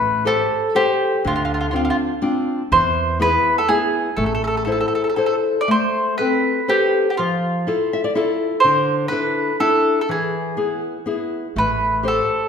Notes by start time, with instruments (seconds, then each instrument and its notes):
Already playing: upright bass A1, nylon-string guitar A3, mandolin B4
0.25 nylon-string guitar G4 A4 C5, mandolin A4
0.75 nylon-string guitar G4 A4 C5, mandolin G4
1.25 upright bass D2, nylon-string guitar D3, mandolin F4
1.36 mandolin F4
1.45 mandolin F4
1.54 mandolin F4
1.61 mandolin F4
1.71 nylon-string guitar C4 D4 F4, mandolin F4
1.76 mandolin F4
1.85 mandolin F4
1.90 mandolin F4
2.22 nylon-string guitar C4 D4 F4
2.72 upright bass E2, nylon-string guitar E3, mandolin C5
3.20 nylon-string guitar B3 E4 G#4, mandolin B4
3.58 mandolin A4
3.69 nylon-string guitar B3 E4 G#4, mandolin G#4
4.17 upright bass A1, nylon-string guitar A3, mandolin A4
4.26 mandolin A4
4.35 mandolin A4
4.44 mandolin A4
4.57 mandolin A4
4.65 nylon-string guitar E4 A4 C5, mandolin A4
4.72 mandolin A4
4.80 mandolin A4
4.88 mandolin A4
4.95 mandolin A4
5.04 mandolin A4
5.10 mandolin A4
5.16 nylon-string guitar E4 A4 C5, mandolin A4
5.26 mandolin A4
5.61 mandolin D5
5.68 nylon-string guitar A3, mandolin C5
6.18 nylon-string guitar C4 A4 B4, mandolin B4
6.68 mandolin G4, nylon-string guitar A4 B4 C5
7.10 mandolin G4
7.17 nylon-string guitar F3, mandolin F4
7.67 nylon-string guitar E4 F4 A4
7.93 nylon-string guitar E5
8.04 nylon-string guitar D5
8.15 nylon-string guitar E4 F4 A4
8.60 mandolin C5
8.64 nylon-string guitar D3
9.08 nylon-string guitar D4 E4, mandolin B4
9.12 nylon-string guitar A4
9.60 nylon-string guitar D4 E4 A4, mandolin A4
10.01 mandolin A4
10.09 nylon-string guitar E3, mandolin G#4
10.57 nylon-string guitar B3 E4 G#4
11.06 nylon-string guitar B3 E4 G#4
11.56 upright bass A1, nylon-string guitar A3, mandolin B4
12.03 nylon-string guitar G4 A4 C5
12.08 mandolin A4